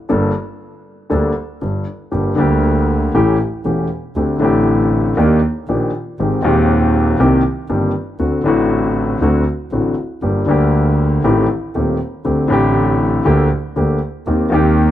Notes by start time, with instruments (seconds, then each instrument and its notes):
0.09 grand piano G1 G2 G3 A#3 D4 A4, double bass G1
1.10 grand piano D2 D3 G3 A#3 D4 A4, double bass D2
1.62 grand piano G1 G2, double bass G1
2.11 grand piano G1 G2 D3 G3 A#3 G4, double bass G1
2.35 grand piano D2 D3 G3 A#3, double bass D2
2.40 grand piano G4
3.14 double bass A1, grand piano A1 A2 E3 A3 C#4 G4
3.65 double bass E1, grand piano E1 E2 E3 A3 C#4 G4
4.16 double bass D2, grand piano D2 D3 A3 C4 G4
4.39 double bass A1, grand piano A1 A2 D3 A3 C4
4.44 grand piano G4
5.17 grand piano D#2 D#3 A#3 D4 G4, double bass D#2
5.68 double bass A#1, grand piano A#1 A#2 D#3 A#3 D4 G4
6.19 double bass G#1, grand piano G#1 G#2 D#3 G#3 C4 G4
6.42 grand piano D#1 D#2 D#3 G#3 C4, double bass D#2
6.46 grand piano G4
7.20 double bass C2, grand piano C2 C3 D#3 A#3 C4 G4
7.69 double bass G1, grand piano G1 G2 D#3 A#3 C4 G4
8.19 grand piano D2 D3 A3 C4 F#4, double bass D2
8.44 double bass A1, grand piano A1 A2 D3 A3 C4 F#4
9.20 double bass D2, grand piano D2 D3 A3 C4 F#4
9.71 double bass A1, grand piano A1 A2 D3 A3 C4 F#4
10.22 double bass G1, grand piano G1 G2 D3 G3 A#3 G4
10.46 double bass D2, grand piano D2 D3 G3 A#3 G4
11.24 double bass A1, grand piano A1 A2 D#3 A3 C4 G4
11.75 grand piano D#1 D#2 D#3 A3 C4 G4, double bass D#2
12.25 grand piano D2 D3 A3 C4 G4, double bass D2
12.48 double bass A1, grand piano A1 A2 D3 A3 C4
12.52 grand piano G4
13.25 grand piano D2 D3 A3 A#3 G4, double bass D2
13.76 grand piano D2 D3 A3 A#3 G4, double bass D2
14.26 double bass D#2, grand piano D#2 D#3 A#3 C4 G4
14.50 double bass D#2, grand piano D#2 D#3 A#3 C4
14.54 grand piano G4